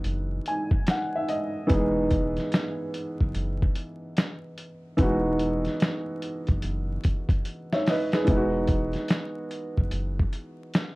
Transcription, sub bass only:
0.05 F#1
1.70 E1
3.20 F#1
3.35 F#1
4.99 E1
6.49 F#1
6.64 F#1
8.28 E1
9.78 F#1
9.92 F#1

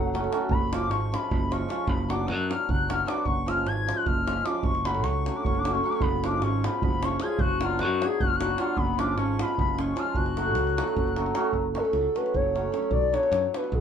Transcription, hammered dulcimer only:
Already playing: F#3
0.14 F#3 A3 C#4 F#4
0.32 F#3 A3 C#4 F#4
0.72 F3 G#3 C#4 F4
1.12 F3 G#3 C#4 F4
1.51 F3 G#3 C#4 F4
1.69 F3 G#3 C#4 F4
2.09 F#3 B3 D4 F#4
2.50 F#3 B3 D4 F#4
2.88 F#3 B3 D4 F#4
3.06 F#3 B3 D4 F#4
3.46 F3 G#3 C#4 F4
3.87 F3 G#3 C#4 F4
4.26 F3 G#3 C#4 F4
4.45 F3 G#3 C#4 F4
4.85 F#3 A3 C#4 F#4
5.26 F#3 A3 C#4 F#4
5.66 F#3 A3 C#4 F#4
5.83 F#3 A3 C#4 F#4
6.24 F3 G#3 C#4 F4
6.65 F3 G#3 C#4 F4
7.04 F3 G#3 C#4 F4
7.22 F3 G#3 C#4 F4
7.61 F#3 B3 D4 F#4
8.02 F#3 B3 D4 F#4
8.40 F#3 B3 D4 F#4
8.58 F#3 B3 D4 F#4
8.98 F3 G#3 C#4 F4
9.39 F3 G#3 C#4 F4
9.78 F3 G#3 C#4 F4
9.96 F3 G#3 C#4 F4
10.37 F#3 A3 C#4 F#4
10.77 F#3 A3 C#4 F#4
11.16 F#3 A3 C#4 F#4
11.34 F#3 A3 C#4 F#4
11.74 F#3 A3 C#4 F#4
12.15 F#3 A3 C#4 F#4
12.55 F#3 A3 C#4 F#4
12.72 F#3 A3 C#4 F#4
13.13 F#3 B3 D4 F#4
13.54 F#3 B3 D4 F#4

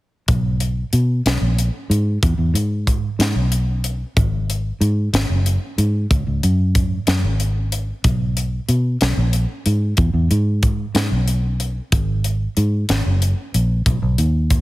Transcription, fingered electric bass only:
0.28 B1
0.93 B2
1.26 B1
1.41 A#1
1.90 G#2
2.23 E2
2.38 E2
2.54 G#2
3.19 G#2
3.35 B1
4.16 G#1
4.81 G#2
5.13 G#1
5.29 F#1
5.78 G#2
6.10 C#2
6.27 C#2
6.43 F#2
7.07 F#2
7.23 G#1
8.04 B1
8.68 B2
9.01 B1
9.17 A#1
9.66 G#2
9.98 E2
10.13 E2
10.31 G#2
10.94 G#2
11.11 B1
11.92 G#1
12.57 G#2
12.89 G#1
13.06 F#1
13.54 A#1
13.86 B1
14.02 B1
14.18 D#2

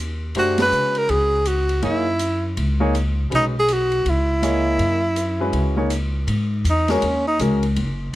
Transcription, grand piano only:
0.36 A3 D4 G4 C5
0.59 G#3 C#4 F#4 B4
1.82 A#3 D#4 G#4 C#5
2.80 A#3 D#4 G#4 C#5
3.30 G#3 C#4 F#4 B4
4.42 A#3 G#4 C#5 D#5
5.40 G#3 C#4 F#4 B4
5.77 A#3 D#4 G#4 C#5
6.89 G#3 C#4 F#4 A#4
7.40 G#3 C#4 F#4 A#4

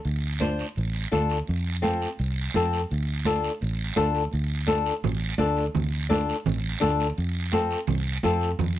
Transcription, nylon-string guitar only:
0.40 D4 F4 C5
1.11 D4 F4 A4
1.82 C4 F4 A4
2.55 C4 F4 A4
3.26 D4 F4 A4
3.96 D4 F4 A4
4.67 D4 F4 A4
5.38 D4 F4 A4
6.09 D4 F4 A4
6.80 D4 F4 A4
7.52 C4 F4 A4
8.23 C4 F4 A4

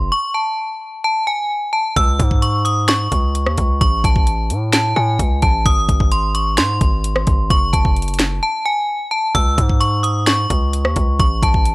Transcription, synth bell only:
0.12 C#6
0.34 A5
1.04 A5
1.27 G#5
1.73 A5
1.97 E6
2.42 C#6
2.65 D#6
2.88 C#6
3.81 C#6
4.05 A5
4.73 A5
4.96 G#5
5.42 A5
5.66 D#6
6.12 C6
6.35 C#6
6.58 C6
7.51 C#6
7.73 A5
8.43 A5
8.66 G#5
9.11 A5
9.35 E6
9.80 C#6
10.03 D#6
10.27 C#6
11.20 C#6
11.43 A5

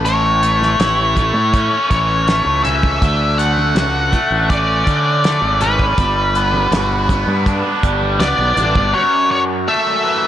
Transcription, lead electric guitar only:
0.05 C#5
1.90 C#5
2.64 E5
3.38 F#5
4.50 D5
5.61 B4
7.46 A4
8.20 D5
8.94 C#5
9.31 C#5
9.68 E5

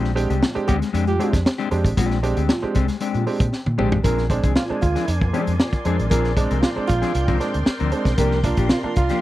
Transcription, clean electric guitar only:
Already playing: G#3 C4 D4 G4
0.16 muted clean electric guitar stroke
0.30 G#3 C4 D4 G4
0.55 muted clean electric guitar stroke
0.67 G#3 C4 D4 G4
0.82 muted clean electric guitar stroke
0.93 G#3 C4 D4 G4
1.07 muted clean electric guitar stroke
1.19 G#3 C4 D4 G#4
1.32 muted clean electric guitar stroke
1.45 muted clean electric guitar stroke
1.58 G#3 C4 D4 G4
1.85 muted clean electric guitar stroke
1.97 G#3 C4 D4 G4
2.23 muted clean electric guitar stroke
2.37 G#3 C4 D4 G4
2.63 muted clean electric guitar stroke
2.75 G#3 C4 D4 G4
2.89 muted clean electric guitar stroke
3.01 G#3 C4 D4 G4
3.27 muted clean electric guitar stroke
3.41 muted clean electric guitar stroke
3.53 muted clean electric guitar stroke
3.66 muted clean electric guitar stroke
3.78 G#3 C4 D4 G4
3.92 muted clean electric guitar stroke
4.04 F3 C4 D4 G#4
4.30 muted clean electric guitar stroke
4.44 F3 C4 D4 G#4
4.56 muted clean electric guitar stroke
4.70 muted clean electric guitar stroke
4.95 F3 C4 D4 G#4
5.21 muted clean electric guitar stroke
5.33 F3 C4 D4 G#4
5.48 muted clean electric guitar stroke
5.73 muted clean electric guitar stroke
5.85 F3 C4 D4 G#4
5.99 muted clean electric guitar stroke
6.11 F3 C4 D4 G#4
6.37 muted clean electric guitar stroke
6.51 F3 C4 D4 A#4
6.76 muted clean electric guitar stroke
7.02 F3 C4 D4 G#4
7.28 F3 C4 D4 A#4
7.41 muted clean electric guitar stroke
7.54 muted clean electric guitar stroke
7.66 muted clean electric guitar stroke
7.80 F3 C4 D4 A#4
8.07 muted clean electric guitar stroke
8.19 F3 A#3 D4 G4
8.44 muted clean electric guitar stroke
8.59 F3 A#3 D4 G4
8.71 muted clean electric guitar stroke
8.84 muted clean electric guitar stroke
9.10 F3 A#3 D4 G4

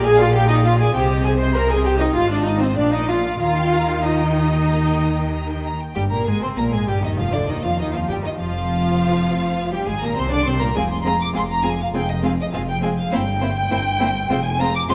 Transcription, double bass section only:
Already playing: A#1
0.94 C2
2.15 G#1
2.76 A#1
3.41 D#2
5.96 G1
6.27 G#1
6.57 A#1
6.88 G1
7.18 F1
7.50 D#2
7.79 D#2
8.10 G1
8.39 F1
9.88 G#1
10.17 C2
10.46 C2
10.76 F1
11.35 F1
11.93 F1
12.52 F1
13.12 G1
13.71 G1
14.31 F1
14.90 F1

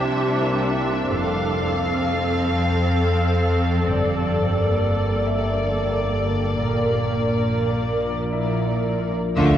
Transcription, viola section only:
Already playing: D4 G4
1.10 A4
1.79 C4
4.55 A#3
6.61 A#4
9.37 A3
9.55 A3

